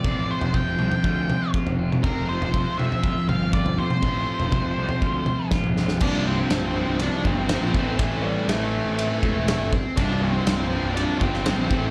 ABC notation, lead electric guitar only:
X:1
M:4/4
L:1/8
Q:1/4=121
K:C
V:1 name="Lead electric guitar"
d c g4 z2 | _B c2 e2 f d c- | c6 z2 | [Dd] [Cc]3 [Dd] [Cc]3 |
[E,E] [G,G] [A,A]4- [A,A] z | [Dd] [Cc]3 [Dd] [Cc]3 |]